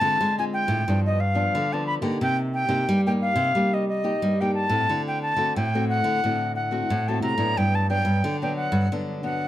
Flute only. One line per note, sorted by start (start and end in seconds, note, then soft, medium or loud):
0.00 0.37 A5 loud
0.39 0.45 G#5 medium
0.53 1.00 G5 loud
1.06 1.22 D#5 medium
1.20 1.74 F5 medium
1.73 1.86 A5 medium
1.87 1.95 B5 loud
2.22 2.38 G5 loud
2.54 3.01 G5 loud
3.07 3.13 G5 medium
3.21 3.75 F5 loud
3.74 3.88 D#5 medium
3.88 4.42 D#5 medium
4.41 4.54 G5 medium
4.54 5.02 A5 loud
5.08 5.22 G5 medium
5.22 5.54 A5 loud
5.56 5.88 G5 loud
5.89 6.52 F#5 loud
6.56 7.10 F#5 medium
7.08 7.22 A5 medium
7.22 7.59 A#5 medium
7.57 7.77 G5 loud
7.75 7.89 A5 medium
7.90 8.37 G5 loud
8.42 8.56 G5 medium
8.56 8.95 F#5 loud
9.24 9.48 F#5 medium